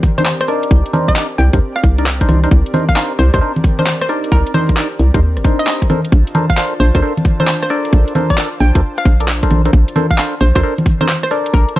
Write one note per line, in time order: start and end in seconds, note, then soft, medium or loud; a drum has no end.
0.00 5.86 C4 medium
0.00 5.86 G4 medium
0.00 5.86 A#4 medium
0.00 5.86 D5 medium
0.00 kick loud
0.00 open hi-hat loud
0.18 0.24 D4 medium
0.18 0.24 D#4 medium
0.18 0.24 A#4 medium
0.18 0.23 C5 medium
0.18 0.24 C5 medium
0.18 closed hi-hat medium
0.18 high conga medium
0.26 0.35 C5 medium
0.26 clap loud
0.41 0.59 C5 medium
0.41 cross-stick medium
0.41 closed hi-hat medium
0.48 0.92 D4 medium
0.48 0.92 D#4 medium
0.48 0.92 A#4 medium
0.48 0.92 D5 loud
0.48 cross-stick soft
0.48 open hi-hat medium
0.63 closed hi-hat medium
0.71 0.82 C2 loud
0.71 kick loud
0.86 closed hi-hat soft
0.93 1.14 D4 medium
0.93 1.14 D#4 medium
0.93 1.14 A#4 medium
0.93 1.14 C5 medium
0.93 open hi-hat loud
0.93 high conga medium
1.08 1.27 D#5 medium
1.08 kick medium
1.08 closed hi-hat medium
1.16 1.27 D4 medium
1.16 1.27 D#4 medium
1.16 1.27 A#4 medium
1.16 1.27 D5 loud
1.16 clap loud
1.38 1.50 C2 loud
1.38 1.59 G5 medium
1.38 open hi-hat medium
1.53 1.59 D#2 medium
1.53 1.59 D4 medium
1.53 1.59 D#4 medium
1.53 1.59 A#4 medium
1.53 1.59 C5 medium
1.53 kick loud
1.53 closed hi-hat medium
1.76 2.06 F5 medium
1.76 cross-stick soft
1.76 closed hi-hat soft
1.84 2.26 C2 medium
1.84 kick loud
1.84 open hi-hat loud
1.98 2.04 D4 medium
1.98 2.04 D#4 medium
1.98 2.04 A#4 medium
1.98 2.04 D5 medium
1.98 closed hi-hat medium
2.06 clap loud
2.21 2.40 D4 medium
2.21 2.40 D#4 medium
2.21 2.40 A#4 medium
2.21 2.40 C5 medium
2.21 kick medium
2.21 closed hi-hat soft
2.29 2.48 C2 medium
2.29 cross-stick soft
2.29 open hi-hat medium
2.29 high conga medium
2.44 2.49 D4 medium
2.44 2.49 D#4 medium
2.44 2.49 A#4 medium
2.44 2.49 C5 medium
2.44 closed hi-hat medium
2.51 2.63 C2 loud
2.51 kick loud
2.66 closed hi-hat soft
2.74 2.85 D4 medium
2.74 2.85 D#4 medium
2.74 2.85 A#4 medium
2.74 2.85 C5 medium
2.74 open hi-hat loud
2.74 high conga medium
2.89 2.94 F5 medium
2.89 kick medium
2.89 closed hi-hat medium
2.96 3.13 D4 medium
2.96 3.13 D#4 medium
2.96 3.13 A#4 medium
2.96 3.13 C5 medium
2.96 3.06 F5 medium
2.96 clap loud
3.19 3.30 C2 loud
3.19 3.28 C5 medium
3.19 open hi-hat medium
3.34 3.40 D#2 medium
3.34 3.39 D4 medium
3.34 3.39 D#4 medium
3.34 3.40 A#4 medium
3.34 3.39 C5 loud
3.34 3.39 C5 medium
3.34 kick loud
3.34 cross-stick medium
3.34 closed hi-hat medium
3.41 3.52 D4 medium
3.41 3.52 D#4 medium
3.41 3.52 A#4 medium
3.41 3.52 C5 loud
3.56 closed hi-hat soft
3.56 high conga medium
3.64 kick loud
3.64 open hi-hat loud
3.79 3.85 D4 medium
3.79 3.85 D#4 medium
3.79 3.85 A#4 medium
3.79 3.85 C5 medium
3.79 3.84 C5 medium
3.79 closed hi-hat medium
3.79 high conga medium
3.86 3.96 C5 medium
3.86 clap loud
4.01 4.20 C5 medium
4.01 cross-stick medium
4.01 closed hi-hat soft
4.09 4.52 D4 medium
4.09 4.52 D#4 medium
4.09 4.52 A#4 medium
4.09 4.52 D5 loud
4.09 cross-stick soft
4.09 open hi-hat medium
4.24 closed hi-hat medium
4.32 4.43 C2 loud
4.32 4.52 A#4 medium
4.32 kick loud
4.47 closed hi-hat medium
4.54 4.75 D4 medium
4.54 4.75 D#4 medium
4.54 4.75 A#4 medium
4.54 4.75 C5 medium
4.54 open hi-hat loud
4.54 high conga medium
4.69 kick medium
4.69 closed hi-hat medium
4.77 4.88 D4 medium
4.77 4.88 D#4 medium
4.77 4.88 A#4 medium
4.77 4.88 D5 medium
4.77 clap loud
4.99 5.11 C2 loud
4.99 open hi-hat medium
5.14 5.38 D#2 medium
5.14 5.20 D4 medium
5.14 5.20 D#4 medium
5.14 5.20 A#4 medium
5.14 5.20 C5 medium
5.14 kick loud
5.14 closed hi-hat medium
5.37 5.43 G1 loud
5.37 cross-stick soft
5.37 closed hi-hat soft
5.44 5.88 D4 medium
5.44 5.88 D#4 medium
5.44 5.88 A#4 medium
5.44 5.88 C5 medium
5.44 kick loud
5.44 open hi-hat loud
5.59 5.64 D#5 medium
5.59 closed hi-hat medium
5.67 5.77 D#5 medium
5.67 clap loud
5.82 kick medium
5.82 closed hi-hat medium
5.90 6.01 D4 medium
5.90 11.79 D4 medium
5.90 11.79 F4 medium
5.90 6.01 A4 medium
5.90 6.01 A#4 medium
5.90 6.01 C5 medium
5.90 11.79 C5 medium
5.90 11.79 A5 medium
5.90 cross-stick soft
5.90 open hi-hat medium
5.90 high conga medium
6.05 closed hi-hat medium
6.12 6.24 A#1 loud
6.12 kick loud
6.27 closed hi-hat medium
6.35 6.46 D4 medium
6.35 6.46 A4 medium
6.35 6.46 A#4 medium
6.35 6.46 C5 medium
6.35 open hi-hat loud
6.35 high conga medium
6.50 6.55 F5 medium
6.50 kick medium
6.50 closed hi-hat medium
6.57 6.74 D4 medium
6.57 6.74 A4 medium
6.57 6.74 A#4 medium
6.57 6.74 C5 medium
6.57 6.67 F5 medium
6.57 clap loud
6.80 6.91 A#1 loud
6.80 6.89 C5 medium
6.80 open hi-hat medium
6.95 7.01 D2 medium
6.95 7.00 D4 medium
6.95 7.00 A4 medium
6.95 7.00 A#4 medium
6.95 7.00 C5 loud
6.95 7.00 C5 medium
6.95 kick loud
6.95 cross-stick soft
6.95 closed hi-hat medium
7.02 7.13 D4 loud
7.02 7.13 A4 medium
7.02 7.13 A#4 medium
7.02 7.13 C5 loud
7.17 closed hi-hat soft
7.17 high conga medium
7.25 kick loud
7.25 open hi-hat loud
7.40 7.46 D4 medium
7.40 7.46 A4 medium
7.40 7.46 A#4 medium
7.40 7.46 C5 medium
7.40 7.45 C5 medium
7.40 closed hi-hat medium
7.40 high conga medium
7.48 7.57 C5 medium
7.48 clap loud
7.62 7.81 C5 medium
7.62 cross-stick medium
7.62 closed hi-hat medium
7.70 8.13 D4 medium
7.70 8.13 A4 medium
7.70 8.13 A#4 medium
7.70 8.13 D5 loud
7.70 cross-stick soft
7.70 open hi-hat medium
7.85 closed hi-hat medium
7.93 8.04 A#1 loud
7.93 kick loud
8.08 closed hi-hat medium
8.15 8.36 D4 medium
8.15 8.36 A4 medium
8.15 8.36 A#4 medium
8.15 8.36 C5 medium
8.15 open hi-hat loud
8.15 high conga medium
8.30 8.49 D5 medium
8.30 kick medium
8.30 closed hi-hat medium
8.38 8.49 D4 medium
8.38 8.49 A4 medium
8.38 8.49 A#4 medium
8.38 8.49 D5 medium
8.38 clap loud
8.60 8.72 A#1 loud
8.60 8.81 G5 medium
8.60 open hi-hat medium
8.75 8.81 D2 medium
8.75 8.81 D4 medium
8.75 8.81 A4 medium
8.75 8.81 A#4 medium
8.75 8.81 C5 medium
8.75 kick loud
8.75 closed hi-hat medium
8.98 9.28 F5 medium
8.98 cross-stick soft
8.98 closed hi-hat soft
9.05 9.48 A#1 medium
9.05 kick loud
9.05 open hi-hat loud
9.20 9.26 D4 medium
9.20 9.26 A4 medium
9.20 9.26 A#4 medium
9.20 9.26 D5 medium
9.20 closed hi-hat medium
9.28 clap loud
9.43 9.62 D4 medium
9.43 9.62 A4 medium
9.43 9.62 A#4 medium
9.43 9.62 C5 medium
9.43 kick medium
9.43 closed hi-hat medium
9.51 9.70 A#1 medium
9.51 cross-stick soft
9.51 open hi-hat medium
9.51 high conga medium
9.65 9.71 D4 medium
9.65 9.71 A4 medium
9.65 9.71 A#4 medium
9.65 9.71 C5 medium
9.65 closed hi-hat medium
9.73 9.85 A#1 loud
9.73 kick loud
9.88 closed hi-hat medium
9.96 10.07 D4 medium
9.96 10.07 A4 medium
9.96 10.07 A#4 medium
9.96 10.07 C5 medium
9.96 open hi-hat loud
9.96 high conga medium
10.11 10.15 F5 medium
10.11 kick medium
10.11 closed hi-hat medium
10.18 10.35 D4 medium
10.18 10.35 A4 medium
10.18 10.35 A#4 medium
10.18 10.35 C5 medium
10.18 10.28 F5 medium
10.18 clap loud
10.41 10.52 A#1 loud
10.41 10.50 C5 medium
10.41 open hi-hat medium
10.55 10.62 D2 medium
10.55 10.61 D4 medium
10.55 10.61 A4 medium
10.55 10.61 A#4 medium
10.55 10.60 C5 medium
10.55 10.61 C5 loud
10.55 kick loud
10.55 cross-stick medium
10.55 closed hi-hat medium
10.63 10.74 D4 loud
10.63 10.74 A4 medium
10.63 10.74 A#4 medium
10.63 10.74 C5 loud
10.78 closed hi-hat soft
10.78 high conga medium
10.86 kick loud
10.86 open hi-hat loud
11.01 11.06 D4 medium
11.01 11.06 A4 medium
11.01 11.06 A#4 medium
11.01 11.06 C5 medium
11.01 closed hi-hat medium
11.01 high conga medium
11.08 11.18 C5 medium
11.08 clap loud
11.23 11.42 C5 medium
11.23 cross-stick soft
11.23 closed hi-hat medium
11.31 11.74 D4 medium
11.31 11.74 A4 medium
11.31 11.74 A#4 medium
11.31 11.74 D5 loud
11.31 cross-stick soft
11.31 open hi-hat loud
11.46 closed hi-hat medium
11.53 11.65 A#1 loud
11.53 11.74 A#4 medium
11.53 kick loud
11.69 closed hi-hat medium
11.76 11.79 D4 medium
11.76 11.79 A4 medium
11.76 11.79 A#4 medium
11.76 11.79 C5 medium
11.76 open hi-hat loud
11.76 high conga medium